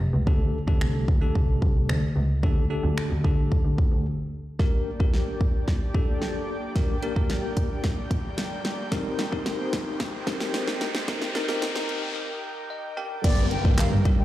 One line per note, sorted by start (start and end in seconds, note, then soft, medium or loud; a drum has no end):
0.14 0.22 C#2 loud
0.27 0.35 D2 loud
0.27 0.57 A3 medium
0.27 0.57 D4 medium
0.27 0.57 G4 medium
0.27 0.57 A4 medium
0.27 kick loud
0.67 0.76 D2 medium
0.67 1.08 A3 medium
0.67 1.08 D4 medium
0.67 1.08 G4 medium
0.67 1.08 A4 medium
0.67 kick medium
0.81 0.98 C2 medium
0.81 finger snap loud
1.08 1.25 D2 medium
1.08 kick medium
1.21 2.02 A3 medium
1.21 2.02 D4 medium
1.21 2.03 G4 medium
1.21 2.03 A4 medium
1.35 1.52 C2 medium
1.35 kick medium
1.62 1.79 C2 medium
1.62 kick medium
1.89 2.06 D2 loud
1.89 finger snap loud
2.16 2.33 C#2 loud
2.43 2.60 D2 loud
2.43 2.63 A3 medium
2.43 2.63 D4 medium
2.43 2.63 G4 medium
2.43 2.64 A4 loud
2.43 kick loud
2.70 3.11 A3 medium
2.70 3.11 D4 medium
2.70 3.11 G4 medium
2.70 3.11 A4 medium
2.84 2.92 D2 medium
2.98 finger snap loud
3.11 3.19 D2 medium
3.24 3.41 D3 loud
3.24 4.05 A3 medium
3.24 4.05 D4 medium
3.24 4.05 G4 medium
3.24 4.05 A4 medium
3.24 kick medium
3.52 kick medium
3.65 3.73 D3 medium
3.78 3.87 D2 medium
3.78 kick medium
3.92 4.00 D2 medium
4.59 4.90 A#3 medium
4.59 13.20 A#3 medium
4.59 8.88 D4 medium
4.59 4.90 D4 medium
4.59 8.88 G4 medium
4.59 4.90 G4 medium
4.59 4.90 A#4 medium
4.59 8.88 D5 medium
4.59 13.20 G5 medium
4.59 kick loud
4.59 snare medium
4.59 riser medium
5.00 5.71 A#3 medium
5.00 5.71 D4 medium
5.00 5.71 G4 medium
5.00 5.71 A#4 medium
5.00 kick medium
5.14 snare medium
5.41 kick medium
5.68 kick medium
5.68 snare medium
5.94 6.55 A#3 medium
5.94 6.55 D4 medium
5.94 6.55 G4 medium
5.94 6.55 A4 medium
5.94 kick medium
6.22 snare medium
6.75 6.96 A#3 medium
6.75 6.96 D4 medium
6.75 6.96 G4 medium
6.75 6.96 A#4 medium
6.75 kick loud
6.75 snare medium
6.75 closed hi-hat medium
7.02 7.13 A#3 medium
7.02 7.13 D4 medium
7.02 7.13 G4 medium
7.02 7.13 A#4 loud
7.02 closed hi-hat medium
7.16 7.97 A#3 medium
7.16 7.97 D4 medium
7.16 7.97 G4 medium
7.16 7.97 A#4 medium
7.16 kick medium
7.30 snare medium
7.30 closed hi-hat medium
7.57 kick medium
7.57 closed hi-hat medium
7.84 kick medium
7.84 snare medium
7.84 closed hi-hat medium
8.11 kick medium
8.11 closed hi-hat medium
8.38 snare medium
8.38 closed hi-hat medium
8.65 snare medium
8.65 closed hi-hat medium
8.92 9.22 C4 medium
8.92 12.93 D#4 medium
8.92 9.22 D#4 medium
8.92 13.20 G4 medium
8.92 9.22 G4 medium
8.92 9.22 A#4 loud
8.92 11.06 C5 medium
8.92 kick loud
8.92 snare medium
8.92 closed hi-hat loud
9.19 snare medium
9.19 closed hi-hat medium
9.32 10.03 C4 medium
9.32 10.03 D#4 medium
9.32 10.03 G4 medium
9.32 10.03 A#4 medium
9.32 kick medium
9.46 snare medium
9.46 closed hi-hat medium
9.73 kick medium
9.73 snare medium
9.73 closed hi-hat medium
10.00 kick medium
10.00 snare medium
10.00 closed hi-hat medium
10.27 10.87 C4 medium
10.27 10.88 D#4 medium
10.27 10.88 G4 medium
10.27 10.88 A#4 medium
10.27 kick medium
10.27 snare loud
10.27 closed hi-hat medium
10.40 snare loud
10.54 snare loud
10.54 closed hi-hat medium
10.67 snare loud
10.81 snare loud
10.81 closed hi-hat medium
10.95 snare loud
11.08 11.28 C4 medium
11.08 11.28 D#4 medium
11.08 11.28 G4 medium
11.08 12.95 A#4 medium
11.08 11.28 A#4 loud
11.08 kick loud
11.08 snare loud
11.08 closed hi-hat loud
11.22 snare loud
11.35 11.45 C4 medium
11.35 11.45 D#4 medium
11.35 11.45 G4 medium
11.35 11.45 A#4 loud
11.35 snare loud
11.35 closed hi-hat medium
11.48 12.29 C4 medium
11.48 12.29 D#4 medium
11.48 12.29 G4 medium
11.48 12.30 A#4 loud
11.48 snare loud
11.62 snare loud
11.62 closed hi-hat loud
11.76 snare loud
11.89 closed hi-hat medium
12.70 12.95 D#5 medium
12.97 13.19 A#3 medium
12.97 13.24 D4 medium
12.97 13.19 D4 medium
12.97 13.19 G4 medium
12.97 13.19 A#4 loud
12.97 13.24 D5 medium
12.97 13.22 G5 medium
13.24 13.41 G1 loud
13.24 14.25 D3 medium
13.24 13.54 G3 medium
13.24 14.25 G3 medium
13.24 13.55 A#3 medium
13.24 14.25 A#3 medium
13.24 13.55 D4 medium
13.24 14.25 G4 medium
13.24 13.55 G4 medium
13.24 14.25 A#4 medium
13.24 13.55 A#4 medium
13.24 13.46 D5 loud
13.24 kick loud
13.24 closed hi-hat loud
13.24 crash loud
13.24 downlifter medium
13.51 13.74 G5 medium
13.51 closed hi-hat medium
13.64 13.73 G1 loud
13.64 13.95 G3 medium
13.64 13.95 A#3 medium
13.64 13.95 D4 medium
13.64 13.95 G4 medium
13.64 13.95 A#4 medium
13.64 kick medium
13.78 13.88 G2 soft
13.78 13.89 F5 medium
13.78 snare loud
13.78 clap loud
13.78 closed hi-hat medium
13.92 14.00 G2 loud
14.05 14.25 G3 medium
14.05 14.25 A#3 medium
14.05 14.25 D4 medium
14.05 14.25 G4 medium
14.05 14.25 A#4 medium
14.05 kick medium
14.05 closed hi-hat medium
14.19 14.25 G1 medium
14.19 14.25 G5 medium